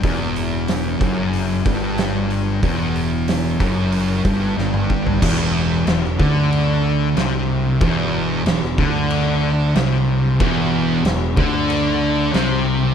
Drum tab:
CC |----------------|----------------|x---x---x---x---|x---x---x---x---|
HH |o-o-o-o-o-o-o-o-|o-o-o-o-o-o-----|----------------|----------------|
SD |----o-------o---|----o-------o---|----oo------o---|----oo------o---|
T2 |----------------|-------------o--|----------------|----------------|
FT |----------------|---------------o|----------------|----------------|
BD |o-----o---o-----|o-----o---o---o-|o-----o---------|o-----o---------|

CC |x---x---x---x---|
HH |----------------|
SD |----o-------o---|
T2 |----------------|
FT |----------------|
BD |o-----o---------|